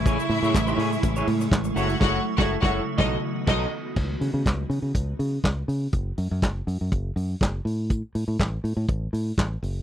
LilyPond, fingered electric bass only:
\new Staff \with { instrumentName = "Fingered electric bass" } { \clef bass \time 4/4 \key b \mixolydian \tempo 4 = 122 a,,8 a,16 a,16 a,,8 a,8 a,,8 a,8 a,,8 fis,,8 | fis,,8 r16 fis,,8 fis,,8 r16 b,,8 r8 b,,8 r8 | cis,8 cis16 cis16 cis,8 cis16 cis16 cis,8 cis8 cis,8 cis8 | fis,,8 fis,16 fis,16 fis,,8 fis,16 fis,16 fis,,8 fis,8 fis,,8 a,8~ |
a,8 a,16 a,16 a,,8 a,16 a,16 a,,8 a,8 a,,8 fis,,8 | }